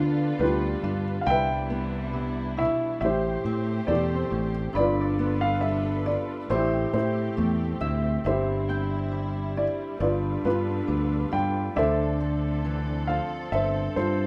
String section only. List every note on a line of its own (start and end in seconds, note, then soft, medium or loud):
0.00 1.24 D3 medium
0.00 1.23 D4 medium
0.00 1.23 F4 medium
0.00 1.25 A4 medium
0.00 1.25 B4 medium
1.27 2.99 E3 medium
1.27 3.00 G3 medium
1.27 3.00 B3 medium
1.27 3.00 D4 medium
1.27 3.00 E4 medium
3.03 4.74 A3 medium
3.03 4.74 G4 medium
3.03 4.74 C5 medium
4.75 6.48 G3 medium
4.75 6.48 D4 medium
4.75 6.48 F4 medium
4.75 6.47 A4 medium
4.75 6.48 B4 medium
6.50 8.23 A3 medium
6.50 9.97 C4 medium
6.50 8.23 G4 medium
8.25 11.73 G3 medium
8.25 9.98 E4 medium
10.00 11.75 D4 medium
10.00 11.75 F4 medium
10.00 11.75 A4 medium
10.00 11.75 B4 medium
11.76 13.51 D3 medium
11.76 13.50 A3 medium
11.76 14.27 C4 medium
11.76 13.51 D4 medium
11.76 14.27 A4 medium
13.52 14.27 G3 medium